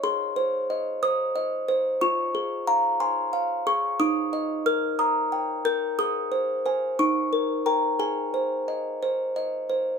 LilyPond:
\new Staff \with { instrumentName = "Music box" } { \time 6/8 \key aes \major \tempo 4. = 60 << { c'''4. ees'''4. | des'''4 bes''8 c'''4 des'''8 | ees'''4 f'''8 ees'''4 g'''8 | ees'''4. des'''4 bes''8 |
aes''2~ aes''8 r8 | } \\ { aes'8 c''8 ees''8 c''8 ees''8 c''8 | f'8 aes'8 f''8 aes''8 f''8 aes'8 | ees'8 ees''8 bes'8 bes''8 g''8 bes'8 | aes'8 c''8 <c'' aes''>8 ees'8 bes'8 <bes' g''>8 |
aes'8 c''8 ees''8 c''8 ees''8 c''8 | } >> }